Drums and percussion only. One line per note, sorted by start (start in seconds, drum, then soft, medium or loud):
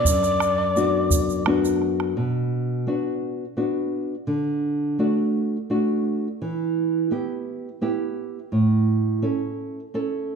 0.05 bombo low medium
0.05 shaker loud
0.23 bombo rim soft
0.23 shaker soft
0.40 bombo rim medium
0.40 shaker soft
0.58 bombo rim soft
0.77 shaker soft
1.10 bombo low medium
1.10 shaker medium
1.30 shaker soft
1.46 bombo rim medium
1.65 shaker soft
1.82 bombo rim soft
2.00 bombo rim medium